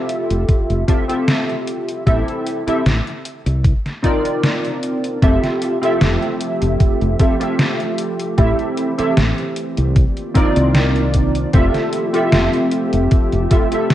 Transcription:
Already playing: C4 F4 G4 A4 E5
0.09 closed hi-hat
0.30 F1, closed hi-hat
0.49 kick, closed hi-hat
0.70 F1, closed hi-hat
0.87 C4 F4 G4 A4 E5, kick, closed hi-hat
1.08 C4 F4 G4 A4 E5, closed hi-hat
1.28 snare, closed hi-hat
1.49 closed hi-hat
1.67 closed hi-hat
1.88 closed hi-hat
2.06 A1 C4 E4 G4 A4 E5, kick, closed hi-hat
2.28 closed hi-hat
2.46 closed hi-hat
2.67 C4 E4 G4 A4 E5, muted fretless electric bass stroke, closed hi-hat
2.85 A1, snare, closed hi-hat
3.07 closed hi-hat
3.25 closed hi-hat
3.46 C2, closed hi-hat
3.65 kick, closed hi-hat
3.86 snare, closed hi-hat
4.03 C4 D#4 F4 A#4 D5, kick, closed hi-hat
4.25 closed hi-hat
4.43 snare, closed hi-hat
4.65 closed hi-hat
4.83 closed hi-hat
5.04 closed hi-hat
5.22 F1 F3 A3 C4 F4 G4 A4 E5, kick, closed hi-hat
5.44 snare, closed hi-hat
5.62 closed hi-hat
5.82 C4 F4 G4 A4 E5, closed hi-hat
6.01 F1, snare, closed hi-hat
6.22 closed hi-hat
6.41 closed hi-hat
6.62 F1, closed hi-hat
6.80 kick, closed hi-hat
7.01 F1, closed hi-hat
7.19 C4 F4 G4 A4 E5, kick, closed hi-hat
7.39 C4 F4 G4 A4 E5, closed hi-hat
7.59 snare, closed hi-hat
7.80 closed hi-hat
7.98 closed hi-hat
8.19 closed hi-hat
8.37 A1 E3 C4 E4 G4 A4 E5, kick, closed hi-hat
8.59 closed hi-hat
8.77 closed hi-hat
8.98 C4 E4 G4 A4 E5, muted fretless electric bass stroke, closed hi-hat
9.17 A1, snare, closed hi-hat
9.38 closed hi-hat
9.56 closed hi-hat
9.77 C2, closed hi-hat
9.96 D#3 A#3 F4 D5, kick, closed hi-hat
10.17 closed hi-hat
10.34 C4 D#4 F4 A#4 D5, kick, closed hi-hat
10.56 C2, closed hi-hat
10.75 snare, closed hi-hat
10.96 closed hi-hat
11.14 kick, closed hi-hat
11.35 closed hi-hat
11.53 F1 F3 A3 C4 F4 G4 A4 E5, kick, closed hi-hat
11.74 snare, closed hi-hat
11.93 closed hi-hat
12.13 C4 F4 G4 A4 E5, closed hi-hat
12.32 F1, snare, closed hi-hat
12.53 closed hi-hat
12.72 closed hi-hat
12.93 F1, closed hi-hat
13.11 kick, closed hi-hat
13.32 F1, closed hi-hat
13.50 C4 F4 G4 A4 E5, kick, closed hi-hat
13.71 C4 F4 G4 A4 E5, closed hi-hat
13.90 snare, closed hi-hat

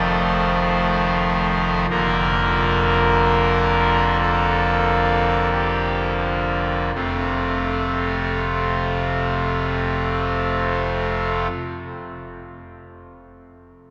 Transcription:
Already playing: F1 F2 D#3 F3 A3 C5
1.90 F1 F2 D3 F3 A#3 A#4
4.22 A4
5.53 G4
6.94 F1 F2 C3 A3 C4 F4

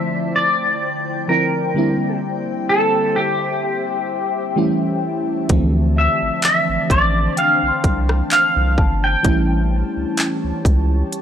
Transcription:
Already playing: D3 F3 A3 C4 E4 C5 D5 E5 G5
0.36 D5
1.28 D3 F3 C4 E4 A#4
1.74 D3 G3 A#3 C4 E4 G4 C5 E5 G5
2.69 A4
3.16 G4
4.56 E3 G3 A3 C#4 E4 C#5 A5
5.49 D2 D3 F3 A3 C4 D4 C5 D5, kick, closed hi-hat
5.53 E3
5.96 E5
6.22 A1
6.42 E5, clap, closed hi-hat
6.69 A1
6.90 A1 D5, kick, closed hi-hat
7.37 F5 G5, closed hi-hat
7.63 C2
7.68 C6
7.84 C2, kick, closed hi-hat
8.09 cross-stick
8.31 F5, clap, closed hi-hat
8.57 C2
8.78 G1 A5, kick
9.04 G5
9.23 A1 E3 G3 A3 C#4 G4 C#5, kick, closed hi-hat
9.27 E4
9.97 C#2
10.17 clap, closed hi-hat
10.44 C#2
10.65 C#2, kick, closed hi-hat
11.13 closed hi-hat

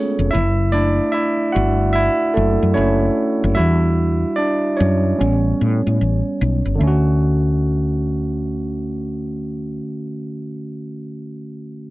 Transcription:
Already playing: G#3 A3 B3 C#4 F4 G#4 A4 C#5
0.19 F1
0.31 F#1 E4 E5
0.72 A3 D4 E4 D5
1.12 E4 E5
1.52 G1 F#4 F#5
1.93 E4 E5
2.34 F#1 A3 A4
2.63 F#2
2.74 F#1 A3 C#4 E4 C#5
3.44 F#1
3.55 G3 D4 E4 F#4 E5
3.59 E2
4.36 D4 D5
4.77 F#2 C#4 C#5
5.18 A1 G3 B3 C#4
5.61 A2
5.87 A2
6.01 A1
6.41 B1
6.66 G1
6.75 D3 A3
6.81 D2 C#4
6.87 F#4

